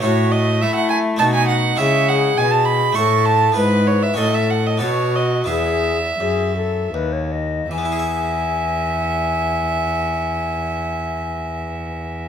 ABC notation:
X:1
M:3/4
L:1/16
Q:1/4=87
K:E
V:1 name="Violin"
c2 d2 e f g2 a g f2 | e2 f2 g a b2 c'2 a2 | B2 c e d e f d c2 d2 | e8 z4 |
e12- | e12 |]
V:2 name="Flute"
F4 E4 D4 | G8 A4 | B4 A4 F4 | G4 G2 A2 B c d2 |
g12- | g12 |]
V:3 name="Harpsichord"
[A,EF]8 [A,DF]4 | [G,Ec]8 [A,Ee]4 | [B,EB]4 [CFA]4 [B,FA]4 | [B,EG]12 |
[E,B,EGe]12- | [E,B,EGe]12 |]
V:4 name="Harpsichord" clef=bass
A,,4 A,4 B,,4 | C,4 B,,4 A,,4 | G,,4 A,,4 B,,4 | E,,4 F,,4 D,,4 |
z12 | z12 |]
V:5 name="Cello" clef=bass
A,,4 A,4 B,,4 | C,4 B,,4 A,,4 | G,,4 A,,4 B,,4 | E,,4 F,,4 D,,4 |
E,,12- | E,,12 |]